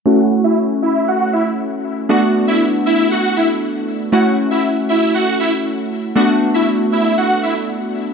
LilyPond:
<<
  \new Staff \with { instrumentName = "Supersaw synth" } { \time 4/4 \key a \major \tempo 4 = 118 <fis' fis''>16 r8 <e' e''>16 r8 <e' e''>8 <fis' fis''>8 <e' e''>16 r4 r16 | <fis' fis''>16 r8 <e' e''>16 r8 <e' e''>8 <fis' fis''>8 <e' e''>16 r4 r16 | <fis' fis''>16 r8 <e' e''>16 r8 <e' e''>8 <fis' fis''>8 <e' e''>16 r4 r16 | <fis' fis''>16 r8 <e' e''>16 r8 <e' e''>8 <fis' fis''>8 <e' e''>16 r4 r16 | }
  \new Staff \with { instrumentName = "Synth keys" } { \time 4/4 \key a \major <a cis' e' fis'>1 | <a b d' fis'>1 | <a cis' e' fis'>1 | <a b d' fis'>1 | }
>>